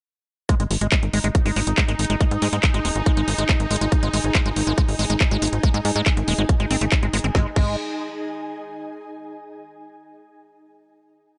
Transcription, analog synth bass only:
0, 0, Header, 1, 2, 480
1, 0, Start_track
1, 0, Tempo, 428571
1, 551, Time_signature, 4, 2, 24, 8
1, 12747, End_track
2, 0, Start_track
2, 0, Title_t, "Analog synth bass"
2, 0, Program_c, 0, 38
2, 671, Note_on_c, 0, 32, 86
2, 743, Note_off_c, 0, 32, 0
2, 790, Note_on_c, 0, 32, 99
2, 863, Note_off_c, 0, 32, 0
2, 911, Note_on_c, 0, 32, 90
2, 983, Note_off_c, 0, 32, 0
2, 1151, Note_on_c, 0, 32, 85
2, 1223, Note_off_c, 0, 32, 0
2, 1271, Note_on_c, 0, 32, 98
2, 1343, Note_off_c, 0, 32, 0
2, 1391, Note_on_c, 0, 32, 97
2, 1463, Note_off_c, 0, 32, 0
2, 1631, Note_on_c, 0, 32, 88
2, 1703, Note_off_c, 0, 32, 0
2, 1750, Note_on_c, 0, 32, 102
2, 1823, Note_off_c, 0, 32, 0
2, 1871, Note_on_c, 0, 32, 90
2, 1943, Note_off_c, 0, 32, 0
2, 2111, Note_on_c, 0, 32, 93
2, 2183, Note_off_c, 0, 32, 0
2, 2231, Note_on_c, 0, 32, 97
2, 2303, Note_off_c, 0, 32, 0
2, 2350, Note_on_c, 0, 32, 93
2, 2423, Note_off_c, 0, 32, 0
2, 2591, Note_on_c, 0, 44, 89
2, 2663, Note_off_c, 0, 44, 0
2, 2711, Note_on_c, 0, 44, 104
2, 2783, Note_off_c, 0, 44, 0
2, 2831, Note_on_c, 0, 44, 89
2, 2903, Note_off_c, 0, 44, 0
2, 3071, Note_on_c, 0, 32, 89
2, 3143, Note_off_c, 0, 32, 0
2, 3191, Note_on_c, 0, 27, 102
2, 3263, Note_off_c, 0, 27, 0
2, 3311, Note_on_c, 0, 32, 101
2, 3383, Note_off_c, 0, 32, 0
2, 3551, Note_on_c, 0, 32, 84
2, 3623, Note_off_c, 0, 32, 0
2, 3671, Note_on_c, 0, 32, 100
2, 3743, Note_off_c, 0, 32, 0
2, 3791, Note_on_c, 0, 32, 94
2, 3863, Note_off_c, 0, 32, 0
2, 4031, Note_on_c, 0, 32, 92
2, 4103, Note_off_c, 0, 32, 0
2, 4151, Note_on_c, 0, 32, 99
2, 4223, Note_off_c, 0, 32, 0
2, 4271, Note_on_c, 0, 32, 98
2, 4343, Note_off_c, 0, 32, 0
2, 4511, Note_on_c, 0, 32, 91
2, 4583, Note_off_c, 0, 32, 0
2, 4631, Note_on_c, 0, 32, 100
2, 4703, Note_off_c, 0, 32, 0
2, 4751, Note_on_c, 0, 32, 90
2, 4823, Note_off_c, 0, 32, 0
2, 4991, Note_on_c, 0, 32, 90
2, 5063, Note_off_c, 0, 32, 0
2, 5111, Note_on_c, 0, 32, 101
2, 5183, Note_off_c, 0, 32, 0
2, 5231, Note_on_c, 0, 32, 96
2, 5303, Note_off_c, 0, 32, 0
2, 5471, Note_on_c, 0, 32, 87
2, 5543, Note_off_c, 0, 32, 0
2, 5591, Note_on_c, 0, 32, 106
2, 5663, Note_off_c, 0, 32, 0
2, 5711, Note_on_c, 0, 32, 89
2, 5783, Note_off_c, 0, 32, 0
2, 5950, Note_on_c, 0, 32, 90
2, 6023, Note_off_c, 0, 32, 0
2, 6071, Note_on_c, 0, 32, 94
2, 6143, Note_off_c, 0, 32, 0
2, 6190, Note_on_c, 0, 32, 92
2, 6263, Note_off_c, 0, 32, 0
2, 6430, Note_on_c, 0, 44, 91
2, 6503, Note_off_c, 0, 44, 0
2, 6551, Note_on_c, 0, 44, 107
2, 6623, Note_off_c, 0, 44, 0
2, 6671, Note_on_c, 0, 44, 91
2, 6743, Note_off_c, 0, 44, 0
2, 6911, Note_on_c, 0, 32, 87
2, 6983, Note_off_c, 0, 32, 0
2, 7031, Note_on_c, 0, 27, 104
2, 7103, Note_off_c, 0, 27, 0
2, 7150, Note_on_c, 0, 32, 99
2, 7223, Note_off_c, 0, 32, 0
2, 7390, Note_on_c, 0, 32, 89
2, 7463, Note_off_c, 0, 32, 0
2, 7510, Note_on_c, 0, 32, 103
2, 7583, Note_off_c, 0, 32, 0
2, 7630, Note_on_c, 0, 32, 91
2, 7703, Note_off_c, 0, 32, 0
2, 7870, Note_on_c, 0, 32, 91
2, 7943, Note_off_c, 0, 32, 0
2, 7990, Note_on_c, 0, 32, 98
2, 8063, Note_off_c, 0, 32, 0
2, 8111, Note_on_c, 0, 32, 97
2, 8183, Note_off_c, 0, 32, 0
2, 8230, Note_on_c, 0, 32, 100
2, 8364, Note_off_c, 0, 32, 0
2, 8471, Note_on_c, 0, 32, 97
2, 8694, Note_off_c, 0, 32, 0
2, 12747, End_track
0, 0, End_of_file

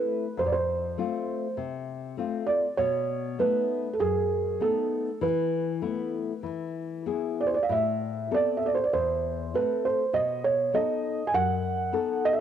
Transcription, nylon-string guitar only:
0, 0, Header, 1, 2, 480
1, 0, Start_track
1, 0, Tempo, 604230
1, 296, Time_signature, 4, 2, 24, 8
1, 4131, Tempo, 620476
1, 7011, Tempo, 602410
1, 9784, End_track
2, 0, Start_track
2, 0, Title_t, "Nylon-string guitar"
2, 0, Program_c, 0, 24
2, 0, Note_on_c, 0, 57, 48
2, 0, Note_on_c, 0, 60, 40
2, 0, Note_on_c, 0, 64, 46
2, 197, Note_off_c, 0, 57, 0
2, 200, Note_off_c, 0, 60, 0
2, 202, Note_off_c, 0, 64, 0
2, 296, Note_on_c, 0, 41, 66
2, 761, Note_off_c, 0, 41, 0
2, 776, Note_on_c, 0, 57, 46
2, 781, Note_on_c, 0, 60, 40
2, 785, Note_on_c, 0, 65, 53
2, 1155, Note_off_c, 0, 57, 0
2, 1158, Note_off_c, 0, 60, 0
2, 1160, Note_off_c, 0, 65, 0
2, 1249, Note_on_c, 0, 48, 58
2, 1710, Note_off_c, 0, 48, 0
2, 1725, Note_on_c, 0, 57, 47
2, 1731, Note_on_c, 0, 60, 48
2, 1738, Note_on_c, 0, 65, 55
2, 2107, Note_off_c, 0, 57, 0
2, 2112, Note_off_c, 0, 60, 0
2, 2114, Note_off_c, 0, 65, 0
2, 2210, Note_on_c, 0, 47, 73
2, 2677, Note_off_c, 0, 47, 0
2, 2691, Note_on_c, 0, 57, 50
2, 2695, Note_on_c, 0, 63, 52
2, 2698, Note_on_c, 0, 59, 47
2, 3076, Note_off_c, 0, 57, 0
2, 3079, Note_off_c, 0, 59, 0
2, 3079, Note_off_c, 0, 63, 0
2, 3173, Note_on_c, 0, 42, 63
2, 3638, Note_off_c, 0, 42, 0
2, 3654, Note_on_c, 0, 57, 48
2, 3660, Note_on_c, 0, 63, 56
2, 3661, Note_on_c, 0, 59, 49
2, 4039, Note_off_c, 0, 57, 0
2, 4041, Note_off_c, 0, 59, 0
2, 4042, Note_off_c, 0, 63, 0
2, 4140, Note_on_c, 0, 52, 73
2, 4596, Note_off_c, 0, 52, 0
2, 4607, Note_on_c, 0, 57, 50
2, 4610, Note_on_c, 0, 59, 43
2, 4615, Note_on_c, 0, 64, 50
2, 4992, Note_off_c, 0, 57, 0
2, 4992, Note_off_c, 0, 59, 0
2, 4996, Note_off_c, 0, 64, 0
2, 5082, Note_on_c, 0, 52, 59
2, 5555, Note_off_c, 0, 52, 0
2, 5570, Note_on_c, 0, 59, 48
2, 5573, Note_on_c, 0, 64, 41
2, 5577, Note_on_c, 0, 68, 45
2, 5960, Note_off_c, 0, 59, 0
2, 5961, Note_off_c, 0, 64, 0
2, 5964, Note_off_c, 0, 68, 0
2, 6059, Note_on_c, 0, 45, 72
2, 6525, Note_off_c, 0, 45, 0
2, 6538, Note_on_c, 0, 60, 44
2, 6540, Note_on_c, 0, 59, 41
2, 6542, Note_on_c, 0, 69, 51
2, 6918, Note_off_c, 0, 59, 0
2, 6918, Note_off_c, 0, 60, 0
2, 6920, Note_off_c, 0, 69, 0
2, 7018, Note_on_c, 0, 40, 65
2, 7486, Note_off_c, 0, 40, 0
2, 7502, Note_on_c, 0, 57, 47
2, 7505, Note_on_c, 0, 60, 48
2, 7508, Note_on_c, 0, 69, 55
2, 7884, Note_off_c, 0, 57, 0
2, 7886, Note_off_c, 0, 60, 0
2, 7887, Note_off_c, 0, 69, 0
2, 7975, Note_on_c, 0, 47, 69
2, 8441, Note_off_c, 0, 47, 0
2, 8456, Note_on_c, 0, 59, 48
2, 8460, Note_on_c, 0, 63, 47
2, 8461, Note_on_c, 0, 69, 50
2, 8839, Note_off_c, 0, 59, 0
2, 8840, Note_off_c, 0, 63, 0
2, 8842, Note_off_c, 0, 69, 0
2, 8932, Note_on_c, 0, 42, 61
2, 9396, Note_off_c, 0, 42, 0
2, 9403, Note_on_c, 0, 59, 52
2, 9409, Note_on_c, 0, 63, 46
2, 9412, Note_on_c, 0, 69, 58
2, 9784, Note_off_c, 0, 59, 0
2, 9784, Note_off_c, 0, 63, 0
2, 9784, Note_off_c, 0, 69, 0
2, 9784, End_track
0, 0, End_of_file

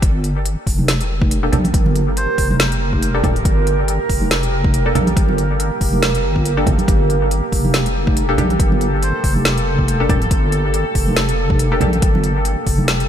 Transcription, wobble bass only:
0, 0, Header, 1, 2, 480
1, 0, Start_track
1, 0, Key_signature, -2, "minor"
1, 0, Tempo, 428571
1, 27, Time_signature, 4, 2, 24, 8
1, 14656, End_track
2, 0, Start_track
2, 0, Title_t, "Wobble bass"
2, 0, Program_c, 0, 39
2, 27, Note_on_c, 0, 31, 100
2, 625, Note_off_c, 0, 31, 0
2, 746, Note_on_c, 0, 29, 96
2, 1693, Note_off_c, 0, 29, 0
2, 1709, Note_on_c, 0, 34, 92
2, 1931, Note_off_c, 0, 34, 0
2, 1946, Note_on_c, 0, 31, 99
2, 2544, Note_off_c, 0, 31, 0
2, 2667, Note_on_c, 0, 29, 96
2, 3613, Note_off_c, 0, 29, 0
2, 3626, Note_on_c, 0, 26, 100
2, 3850, Note_off_c, 0, 26, 0
2, 3865, Note_on_c, 0, 31, 101
2, 4464, Note_off_c, 0, 31, 0
2, 4586, Note_on_c, 0, 29, 96
2, 5533, Note_off_c, 0, 29, 0
2, 5549, Note_on_c, 0, 34, 90
2, 5771, Note_off_c, 0, 34, 0
2, 5787, Note_on_c, 0, 31, 98
2, 6385, Note_off_c, 0, 31, 0
2, 6507, Note_on_c, 0, 29, 97
2, 6987, Note_on_c, 0, 31, 88
2, 7004, Note_off_c, 0, 29, 0
2, 7453, Note_off_c, 0, 31, 0
2, 7466, Note_on_c, 0, 31, 89
2, 7591, Note_off_c, 0, 31, 0
2, 7706, Note_on_c, 0, 31, 102
2, 8304, Note_off_c, 0, 31, 0
2, 8425, Note_on_c, 0, 29, 97
2, 9373, Note_off_c, 0, 29, 0
2, 9386, Note_on_c, 0, 34, 90
2, 9610, Note_off_c, 0, 34, 0
2, 9626, Note_on_c, 0, 31, 101
2, 10224, Note_off_c, 0, 31, 0
2, 10347, Note_on_c, 0, 29, 98
2, 11293, Note_off_c, 0, 29, 0
2, 11307, Note_on_c, 0, 26, 101
2, 11530, Note_off_c, 0, 26, 0
2, 11546, Note_on_c, 0, 31, 102
2, 12144, Note_off_c, 0, 31, 0
2, 12266, Note_on_c, 0, 29, 95
2, 13213, Note_off_c, 0, 29, 0
2, 13226, Note_on_c, 0, 34, 93
2, 13450, Note_off_c, 0, 34, 0
2, 13466, Note_on_c, 0, 31, 101
2, 14064, Note_off_c, 0, 31, 0
2, 14186, Note_on_c, 0, 29, 97
2, 14656, Note_off_c, 0, 29, 0
2, 14656, End_track
0, 0, End_of_file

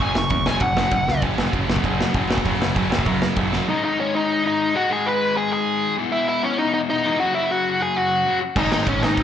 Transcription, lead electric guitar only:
0, 0, Header, 1, 2, 480
1, 0, Start_track
1, 0, Tempo, 305499
1, 16, Time_signature, 4, 2, 24, 8
1, 14505, End_track
2, 0, Start_track
2, 0, Title_t, "Lead electric guitar"
2, 0, Program_c, 0, 29
2, 35, Note_on_c, 0, 80, 103
2, 259, Note_off_c, 0, 80, 0
2, 281, Note_on_c, 0, 85, 86
2, 467, Note_off_c, 0, 85, 0
2, 486, Note_on_c, 0, 85, 98
2, 724, Note_off_c, 0, 85, 0
2, 731, Note_on_c, 0, 80, 108
2, 967, Note_off_c, 0, 80, 0
2, 981, Note_on_c, 0, 78, 102
2, 1911, Note_off_c, 0, 78, 0
2, 5793, Note_on_c, 0, 63, 80
2, 5817, Note_on_c, 0, 75, 100
2, 6008, Note_off_c, 0, 63, 0
2, 6026, Note_on_c, 0, 63, 69
2, 6027, Note_off_c, 0, 75, 0
2, 6046, Note_on_c, 0, 75, 86
2, 6245, Note_off_c, 0, 63, 0
2, 6278, Note_off_c, 0, 75, 0
2, 6281, Note_on_c, 0, 61, 66
2, 6291, Note_on_c, 0, 73, 89
2, 6493, Note_off_c, 0, 61, 0
2, 6520, Note_off_c, 0, 73, 0
2, 6521, Note_on_c, 0, 63, 82
2, 6542, Note_on_c, 0, 75, 100
2, 6956, Note_off_c, 0, 63, 0
2, 7006, Note_on_c, 0, 63, 83
2, 7013, Note_off_c, 0, 75, 0
2, 7029, Note_on_c, 0, 75, 97
2, 7438, Note_off_c, 0, 63, 0
2, 7472, Note_on_c, 0, 66, 79
2, 7487, Note_on_c, 0, 78, 100
2, 7496, Note_off_c, 0, 75, 0
2, 7688, Note_off_c, 0, 66, 0
2, 7714, Note_on_c, 0, 68, 86
2, 7718, Note_off_c, 0, 78, 0
2, 7739, Note_on_c, 0, 80, 108
2, 7929, Note_off_c, 0, 68, 0
2, 7953, Note_on_c, 0, 71, 81
2, 7975, Note_off_c, 0, 80, 0
2, 7975, Note_on_c, 0, 83, 102
2, 8391, Note_off_c, 0, 71, 0
2, 8436, Note_on_c, 0, 68, 81
2, 8437, Note_off_c, 0, 83, 0
2, 8443, Note_on_c, 0, 80, 104
2, 8649, Note_off_c, 0, 68, 0
2, 8668, Note_off_c, 0, 80, 0
2, 8671, Note_on_c, 0, 68, 83
2, 8687, Note_on_c, 0, 80, 104
2, 9333, Note_off_c, 0, 68, 0
2, 9341, Note_off_c, 0, 80, 0
2, 9620, Note_on_c, 0, 76, 108
2, 9622, Note_on_c, 0, 64, 73
2, 9839, Note_off_c, 0, 64, 0
2, 9861, Note_on_c, 0, 64, 71
2, 9865, Note_off_c, 0, 76, 0
2, 9884, Note_on_c, 0, 76, 94
2, 10081, Note_off_c, 0, 64, 0
2, 10108, Note_on_c, 0, 61, 68
2, 10116, Note_off_c, 0, 76, 0
2, 10122, Note_on_c, 0, 73, 87
2, 10325, Note_off_c, 0, 61, 0
2, 10345, Note_on_c, 0, 63, 76
2, 10350, Note_off_c, 0, 73, 0
2, 10357, Note_on_c, 0, 75, 80
2, 10564, Note_off_c, 0, 63, 0
2, 10573, Note_off_c, 0, 75, 0
2, 10584, Note_on_c, 0, 63, 76
2, 10592, Note_on_c, 0, 75, 103
2, 10662, Note_off_c, 0, 63, 0
2, 10670, Note_off_c, 0, 75, 0
2, 10835, Note_on_c, 0, 63, 77
2, 10848, Note_on_c, 0, 75, 98
2, 11273, Note_off_c, 0, 63, 0
2, 11276, Note_off_c, 0, 75, 0
2, 11306, Note_on_c, 0, 66, 79
2, 11312, Note_on_c, 0, 78, 95
2, 11525, Note_off_c, 0, 66, 0
2, 11537, Note_off_c, 0, 78, 0
2, 11543, Note_on_c, 0, 76, 89
2, 11554, Note_on_c, 0, 64, 69
2, 11767, Note_off_c, 0, 64, 0
2, 11798, Note_on_c, 0, 66, 79
2, 11807, Note_off_c, 0, 76, 0
2, 11807, Note_on_c, 0, 78, 94
2, 12235, Note_off_c, 0, 66, 0
2, 12281, Note_off_c, 0, 78, 0
2, 12287, Note_on_c, 0, 68, 78
2, 12294, Note_on_c, 0, 80, 90
2, 12496, Note_off_c, 0, 68, 0
2, 12513, Note_on_c, 0, 66, 75
2, 12516, Note_on_c, 0, 78, 86
2, 12519, Note_off_c, 0, 80, 0
2, 13173, Note_off_c, 0, 78, 0
2, 13175, Note_off_c, 0, 66, 0
2, 13480, Note_on_c, 0, 63, 78
2, 13491, Note_on_c, 0, 75, 80
2, 13693, Note_off_c, 0, 63, 0
2, 13697, Note_off_c, 0, 75, 0
2, 13716, Note_on_c, 0, 75, 82
2, 13723, Note_on_c, 0, 63, 62
2, 13933, Note_off_c, 0, 63, 0
2, 13952, Note_off_c, 0, 75, 0
2, 13952, Note_on_c, 0, 73, 89
2, 13968, Note_on_c, 0, 61, 70
2, 14176, Note_off_c, 0, 61, 0
2, 14198, Note_off_c, 0, 73, 0
2, 14198, Note_on_c, 0, 75, 97
2, 14208, Note_on_c, 0, 63, 78
2, 14505, Note_off_c, 0, 63, 0
2, 14505, Note_off_c, 0, 75, 0
2, 14505, End_track
0, 0, End_of_file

